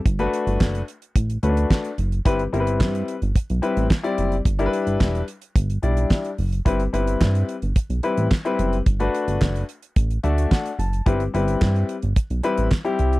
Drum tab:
HH |xxxx-xxxxxxx-xxx|xxxx-xxxxxxx-xxx|xxxx-xxxxxxx-xox|xxxx-xxxxxxx-xxx|
CP |----x-------x---|----x-------x---|----x-------x---|----x-------x---|
SD |----o-------o---|----o-------o---|----o-------o---|----o-------o---|
BD |o---o---o---o---|o---o---o---o---|o---o---o---o---|o---o---o---o---|

HH |xxxx-xxxxxxx-xxx|xxxx-xxxxxxx-xxx|
CP |----x-------x---|----x-------x---|
SD |----o-------o---|----o-------o---|
BD |o---o---o---o---|o---o---o---o---|